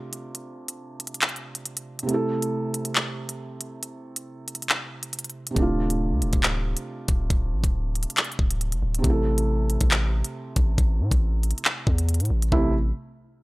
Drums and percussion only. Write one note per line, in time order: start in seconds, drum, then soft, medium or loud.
0.13 closed hi-hat medium
0.35 closed hi-hat medium
0.68 closed hi-hat medium
1.00 closed hi-hat medium
1.07 closed hi-hat medium
1.14 closed hi-hat medium
1.22 clap loud
1.22 closed hi-hat medium
1.29 closed hi-hat soft
1.36 closed hi-hat soft
1.55 closed hi-hat medium
1.66 closed hi-hat medium
1.77 closed hi-hat medium
1.99 closed hi-hat medium
2.09 closed hi-hat medium
2.42 closed hi-hat medium
2.74 closed hi-hat medium
2.85 closed hi-hat medium
2.96 clap loud
3.29 closed hi-hat medium
3.61 closed hi-hat medium
3.83 closed hi-hat medium
4.16 closed hi-hat medium
4.48 closed hi-hat medium
4.55 closed hi-hat medium
4.62 closed hi-hat medium
4.69 clap loud
5.03 closed hi-hat medium
5.13 closed hi-hat medium
5.19 closed hi-hat medium
5.24 closed hi-hat medium
5.30 closed hi-hat soft
5.47 closed hi-hat medium
5.56 kick loud
5.56 closed hi-hat medium
5.90 closed hi-hat medium
6.22 closed hi-hat medium
6.33 kick medium
6.33 closed hi-hat medium
6.43 clap loud
6.77 closed hi-hat medium
7.08 kick loud
7.08 closed hi-hat medium
7.30 kick loud
7.30 closed hi-hat medium
7.64 kick loud
7.64 closed hi-hat medium
7.95 closed hi-hat medium
8.03 closed hi-hat medium
8.10 closed hi-hat medium
8.17 clap loud
8.17 closed hi-hat medium
8.24 closed hi-hat soft
8.32 closed hi-hat soft
8.39 kick medium
8.51 closed hi-hat medium
8.61 closed hi-hat medium
8.72 closed hi-hat medium
8.95 closed hi-hat medium
9.04 kick loud
9.04 closed hi-hat medium
9.38 closed hi-hat medium
9.70 closed hi-hat medium
9.81 kick medium
9.81 closed hi-hat medium
9.91 clap loud
10.24 closed hi-hat medium
10.56 kick loud
10.56 closed hi-hat medium
10.78 kick loud
10.78 closed hi-hat medium
11.11 kick loud
11.11 closed hi-hat medium
11.43 closed hi-hat medium
11.51 closed hi-hat medium
11.58 closed hi-hat medium
11.65 clap loud
11.87 kick medium
11.98 closed hi-hat medium
12.09 closed hi-hat medium
12.14 closed hi-hat medium
12.20 closed hi-hat medium
12.25 closed hi-hat soft
12.42 closed hi-hat medium
12.52 kick loud
12.52 floor tom loud